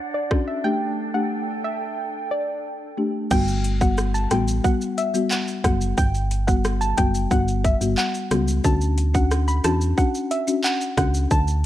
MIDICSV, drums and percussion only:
0, 0, Header, 1, 2, 480
1, 0, Start_track
1, 0, Tempo, 666667
1, 464, Time_signature, 4, 2, 24, 8
1, 8394, End_track
2, 0, Start_track
2, 0, Title_t, "Drums"
2, 223, Note_on_c, 9, 36, 99
2, 225, Note_on_c, 9, 37, 93
2, 295, Note_off_c, 9, 36, 0
2, 297, Note_off_c, 9, 37, 0
2, 2382, Note_on_c, 9, 82, 83
2, 2384, Note_off_c, 9, 82, 0
2, 2384, Note_on_c, 9, 36, 127
2, 2384, Note_on_c, 9, 49, 106
2, 2384, Note_on_c, 9, 82, 91
2, 2456, Note_off_c, 9, 36, 0
2, 2456, Note_off_c, 9, 49, 0
2, 2456, Note_off_c, 9, 82, 0
2, 2504, Note_on_c, 9, 82, 59
2, 2505, Note_off_c, 9, 82, 0
2, 2505, Note_on_c, 9, 82, 56
2, 2577, Note_off_c, 9, 82, 0
2, 2623, Note_on_c, 9, 42, 65
2, 2623, Note_on_c, 9, 82, 46
2, 2625, Note_off_c, 9, 82, 0
2, 2625, Note_on_c, 9, 82, 50
2, 2695, Note_off_c, 9, 42, 0
2, 2697, Note_off_c, 9, 82, 0
2, 2744, Note_on_c, 9, 82, 78
2, 2745, Note_on_c, 9, 36, 95
2, 2816, Note_off_c, 9, 82, 0
2, 2817, Note_off_c, 9, 36, 0
2, 2862, Note_on_c, 9, 82, 82
2, 2865, Note_off_c, 9, 82, 0
2, 2865, Note_on_c, 9, 82, 80
2, 2866, Note_on_c, 9, 37, 101
2, 2937, Note_off_c, 9, 82, 0
2, 2938, Note_off_c, 9, 37, 0
2, 2982, Note_on_c, 9, 82, 52
2, 2985, Note_off_c, 9, 82, 0
2, 2985, Note_on_c, 9, 82, 54
2, 3057, Note_off_c, 9, 82, 0
2, 3103, Note_on_c, 9, 42, 95
2, 3103, Note_on_c, 9, 82, 66
2, 3104, Note_on_c, 9, 37, 105
2, 3175, Note_off_c, 9, 42, 0
2, 3175, Note_off_c, 9, 82, 0
2, 3176, Note_off_c, 9, 37, 0
2, 3223, Note_on_c, 9, 82, 78
2, 3225, Note_off_c, 9, 82, 0
2, 3225, Note_on_c, 9, 82, 77
2, 3297, Note_off_c, 9, 82, 0
2, 3344, Note_on_c, 9, 36, 101
2, 3344, Note_on_c, 9, 82, 69
2, 3416, Note_off_c, 9, 36, 0
2, 3416, Note_off_c, 9, 82, 0
2, 3464, Note_on_c, 9, 82, 56
2, 3466, Note_off_c, 9, 82, 0
2, 3466, Note_on_c, 9, 82, 59
2, 3538, Note_off_c, 9, 82, 0
2, 3585, Note_on_c, 9, 42, 68
2, 3585, Note_on_c, 9, 82, 50
2, 3657, Note_off_c, 9, 42, 0
2, 3657, Note_off_c, 9, 82, 0
2, 3704, Note_on_c, 9, 82, 95
2, 3705, Note_off_c, 9, 82, 0
2, 3705, Note_on_c, 9, 82, 78
2, 3777, Note_off_c, 9, 82, 0
2, 3820, Note_on_c, 9, 82, 74
2, 3822, Note_on_c, 9, 39, 100
2, 3824, Note_off_c, 9, 82, 0
2, 3824, Note_on_c, 9, 82, 79
2, 3894, Note_off_c, 9, 39, 0
2, 3896, Note_off_c, 9, 82, 0
2, 3943, Note_on_c, 9, 82, 56
2, 3945, Note_off_c, 9, 82, 0
2, 3945, Note_on_c, 9, 82, 50
2, 4017, Note_off_c, 9, 82, 0
2, 4063, Note_on_c, 9, 36, 98
2, 4065, Note_on_c, 9, 37, 95
2, 4065, Note_on_c, 9, 42, 71
2, 4065, Note_on_c, 9, 82, 50
2, 4135, Note_off_c, 9, 36, 0
2, 4137, Note_off_c, 9, 37, 0
2, 4137, Note_off_c, 9, 42, 0
2, 4137, Note_off_c, 9, 82, 0
2, 4184, Note_on_c, 9, 82, 76
2, 4185, Note_off_c, 9, 82, 0
2, 4185, Note_on_c, 9, 82, 81
2, 4257, Note_off_c, 9, 82, 0
2, 4302, Note_on_c, 9, 82, 88
2, 4304, Note_off_c, 9, 82, 0
2, 4304, Note_on_c, 9, 36, 127
2, 4304, Note_on_c, 9, 82, 91
2, 4376, Note_off_c, 9, 36, 0
2, 4376, Note_off_c, 9, 82, 0
2, 4424, Note_on_c, 9, 82, 60
2, 4425, Note_off_c, 9, 82, 0
2, 4425, Note_on_c, 9, 82, 59
2, 4497, Note_off_c, 9, 82, 0
2, 4544, Note_on_c, 9, 42, 66
2, 4544, Note_on_c, 9, 82, 47
2, 4546, Note_off_c, 9, 82, 0
2, 4546, Note_on_c, 9, 82, 51
2, 4616, Note_off_c, 9, 42, 0
2, 4618, Note_off_c, 9, 82, 0
2, 4665, Note_on_c, 9, 82, 76
2, 4666, Note_on_c, 9, 36, 93
2, 4737, Note_off_c, 9, 82, 0
2, 4738, Note_off_c, 9, 36, 0
2, 4784, Note_on_c, 9, 82, 80
2, 4786, Note_off_c, 9, 82, 0
2, 4786, Note_on_c, 9, 82, 77
2, 4787, Note_on_c, 9, 37, 101
2, 4858, Note_off_c, 9, 82, 0
2, 4859, Note_off_c, 9, 37, 0
2, 4903, Note_on_c, 9, 82, 53
2, 4905, Note_off_c, 9, 82, 0
2, 4905, Note_on_c, 9, 82, 55
2, 4977, Note_off_c, 9, 82, 0
2, 5023, Note_on_c, 9, 42, 94
2, 5023, Note_on_c, 9, 82, 66
2, 5026, Note_on_c, 9, 36, 101
2, 5095, Note_off_c, 9, 42, 0
2, 5095, Note_off_c, 9, 82, 0
2, 5098, Note_off_c, 9, 36, 0
2, 5144, Note_on_c, 9, 82, 77
2, 5145, Note_off_c, 9, 82, 0
2, 5145, Note_on_c, 9, 82, 73
2, 5217, Note_off_c, 9, 82, 0
2, 5263, Note_on_c, 9, 82, 69
2, 5264, Note_on_c, 9, 36, 98
2, 5265, Note_off_c, 9, 82, 0
2, 5265, Note_on_c, 9, 82, 75
2, 5336, Note_off_c, 9, 36, 0
2, 5337, Note_off_c, 9, 82, 0
2, 5385, Note_on_c, 9, 82, 58
2, 5386, Note_off_c, 9, 82, 0
2, 5386, Note_on_c, 9, 82, 60
2, 5458, Note_off_c, 9, 82, 0
2, 5505, Note_on_c, 9, 36, 92
2, 5505, Note_on_c, 9, 42, 69
2, 5505, Note_on_c, 9, 82, 47
2, 5577, Note_off_c, 9, 36, 0
2, 5577, Note_off_c, 9, 42, 0
2, 5577, Note_off_c, 9, 82, 0
2, 5625, Note_on_c, 9, 82, 95
2, 5626, Note_off_c, 9, 82, 0
2, 5626, Note_on_c, 9, 82, 78
2, 5698, Note_off_c, 9, 82, 0
2, 5741, Note_on_c, 9, 82, 73
2, 5743, Note_on_c, 9, 39, 103
2, 5744, Note_off_c, 9, 82, 0
2, 5744, Note_on_c, 9, 82, 78
2, 5815, Note_off_c, 9, 39, 0
2, 5816, Note_off_c, 9, 82, 0
2, 5862, Note_on_c, 9, 82, 57
2, 5865, Note_off_c, 9, 82, 0
2, 5865, Note_on_c, 9, 82, 51
2, 5937, Note_off_c, 9, 82, 0
2, 5984, Note_on_c, 9, 42, 75
2, 5984, Note_on_c, 9, 82, 54
2, 5985, Note_off_c, 9, 82, 0
2, 5985, Note_on_c, 9, 37, 103
2, 5985, Note_on_c, 9, 82, 50
2, 6056, Note_off_c, 9, 42, 0
2, 6057, Note_off_c, 9, 37, 0
2, 6057, Note_off_c, 9, 82, 0
2, 6104, Note_on_c, 9, 82, 77
2, 6106, Note_off_c, 9, 82, 0
2, 6106, Note_on_c, 9, 82, 85
2, 6178, Note_off_c, 9, 82, 0
2, 6222, Note_on_c, 9, 82, 88
2, 6224, Note_off_c, 9, 82, 0
2, 6224, Note_on_c, 9, 36, 127
2, 6224, Note_on_c, 9, 82, 89
2, 6296, Note_off_c, 9, 36, 0
2, 6296, Note_off_c, 9, 82, 0
2, 6344, Note_on_c, 9, 82, 58
2, 6345, Note_off_c, 9, 82, 0
2, 6345, Note_on_c, 9, 82, 60
2, 6417, Note_off_c, 9, 82, 0
2, 6463, Note_on_c, 9, 42, 67
2, 6463, Note_on_c, 9, 82, 46
2, 6466, Note_off_c, 9, 82, 0
2, 6466, Note_on_c, 9, 82, 52
2, 6535, Note_off_c, 9, 42, 0
2, 6538, Note_off_c, 9, 82, 0
2, 6585, Note_on_c, 9, 82, 73
2, 6586, Note_on_c, 9, 36, 92
2, 6657, Note_off_c, 9, 82, 0
2, 6658, Note_off_c, 9, 36, 0
2, 6703, Note_on_c, 9, 82, 78
2, 6706, Note_off_c, 9, 82, 0
2, 6706, Note_on_c, 9, 37, 98
2, 6706, Note_on_c, 9, 82, 76
2, 6778, Note_off_c, 9, 37, 0
2, 6778, Note_off_c, 9, 82, 0
2, 6824, Note_on_c, 9, 82, 52
2, 6825, Note_off_c, 9, 82, 0
2, 6825, Note_on_c, 9, 82, 55
2, 6897, Note_off_c, 9, 82, 0
2, 6943, Note_on_c, 9, 42, 95
2, 6943, Note_on_c, 9, 82, 70
2, 6944, Note_on_c, 9, 37, 104
2, 7015, Note_off_c, 9, 42, 0
2, 7015, Note_off_c, 9, 82, 0
2, 7016, Note_off_c, 9, 37, 0
2, 7065, Note_on_c, 9, 82, 75
2, 7137, Note_off_c, 9, 82, 0
2, 7184, Note_on_c, 9, 36, 101
2, 7184, Note_on_c, 9, 82, 68
2, 7186, Note_off_c, 9, 82, 0
2, 7186, Note_on_c, 9, 82, 81
2, 7256, Note_off_c, 9, 36, 0
2, 7258, Note_off_c, 9, 82, 0
2, 7306, Note_on_c, 9, 82, 62
2, 7378, Note_off_c, 9, 82, 0
2, 7425, Note_on_c, 9, 42, 72
2, 7425, Note_on_c, 9, 82, 51
2, 7497, Note_off_c, 9, 42, 0
2, 7497, Note_off_c, 9, 82, 0
2, 7544, Note_on_c, 9, 82, 101
2, 7546, Note_off_c, 9, 82, 0
2, 7546, Note_on_c, 9, 82, 79
2, 7618, Note_off_c, 9, 82, 0
2, 7662, Note_on_c, 9, 39, 100
2, 7662, Note_on_c, 9, 82, 72
2, 7663, Note_off_c, 9, 82, 0
2, 7663, Note_on_c, 9, 82, 76
2, 7734, Note_off_c, 9, 39, 0
2, 7735, Note_off_c, 9, 82, 0
2, 7783, Note_on_c, 9, 82, 57
2, 7784, Note_off_c, 9, 82, 0
2, 7784, Note_on_c, 9, 82, 50
2, 7856, Note_off_c, 9, 82, 0
2, 7903, Note_on_c, 9, 36, 97
2, 7904, Note_on_c, 9, 37, 99
2, 7904, Note_on_c, 9, 42, 76
2, 7904, Note_on_c, 9, 82, 55
2, 7905, Note_off_c, 9, 82, 0
2, 7905, Note_on_c, 9, 82, 50
2, 7975, Note_off_c, 9, 36, 0
2, 7976, Note_off_c, 9, 37, 0
2, 7976, Note_off_c, 9, 42, 0
2, 7977, Note_off_c, 9, 82, 0
2, 8023, Note_on_c, 9, 82, 77
2, 8025, Note_off_c, 9, 82, 0
2, 8025, Note_on_c, 9, 82, 78
2, 8097, Note_off_c, 9, 82, 0
2, 8142, Note_on_c, 9, 82, 89
2, 8143, Note_off_c, 9, 82, 0
2, 8143, Note_on_c, 9, 82, 90
2, 8144, Note_on_c, 9, 36, 125
2, 8215, Note_off_c, 9, 82, 0
2, 8216, Note_off_c, 9, 36, 0
2, 8263, Note_on_c, 9, 82, 60
2, 8265, Note_off_c, 9, 82, 0
2, 8265, Note_on_c, 9, 82, 56
2, 8337, Note_off_c, 9, 82, 0
2, 8394, End_track
0, 0, End_of_file